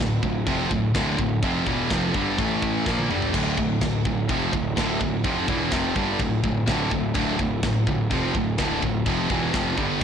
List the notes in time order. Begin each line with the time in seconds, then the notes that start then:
Already playing: A2 D3 A3 E4 F4
0.00 D1 D2, snare
0.23 D1 D2 A2, kick
0.46 F1 F2 C3 F3, kick, crash
0.71 D1 D2 A2, kick
0.95 D1 D2 A2 D3, kick, snare, crash
1.19 D1 D2 A2, kick
1.42 F1 F2 C3 F3, kick, crash
1.67 E1 E2 B2 E3, kick
1.90 F1 F2 C3 F3, kick, snare, crash
2.14 G1 G2 D3 G3, kick
2.38 A1 A2 E3 A3 E4, kick, crash
2.62 kick
2.86 A#1 A#2 D3 F3 A#3 F4, kick, snare
2.99 high tom
3.09 G1 G2 D3 G3, mid tom
3.22 floor tom
3.34 D1 D2 A2 D3, kick, crash
3.58 D1 D2 A2, kick
3.81 D1 D2 A2, kick, snare, crash
4.05 D1 D2 A2, kick
4.29 F1 F2 C3 F3, kick, crash
4.53 D1 D2 A2, kick
4.77 D1 D2 A2 D3, kick, snare, crash
5.01 D1 D2 A2, kick
5.24 F1 F2 C3 F3, kick, crash
5.48 E1 E2 B2 E3, kick
5.71 F1 F2 C3 F3, kick, snare, crash
5.96 G1 G2 D3 G3, kick
6.19 D1 D2 A2, kick, crash
6.43 D1 D2 A2, kick
6.67 D1 D2 A2 D3, kick, snare, crash
6.91 D1 D2 A2, kick
7.14 D1 D2 A2 D3, kick, crash
7.39 D1 D2 A2, kick
7.63 D1 D2 A2, kick, snare, crash
7.87 D1 D2 A2, kick
8.11 F1 F2 C3 F3, kick, crash
8.34 D1 D2 A2, kick
8.58 D1 D2 A2 D3, kick, snare, crash
8.82 D1 D2 A2, kick
9.06 F1 F2 C3 F3, kick, crash
9.30 E1 E2 B2 E3, kick
9.53 F1 F2 C3 F3, kick, snare, crash
9.77 G1 G2 D3 G3, kick
10.00 A2 E3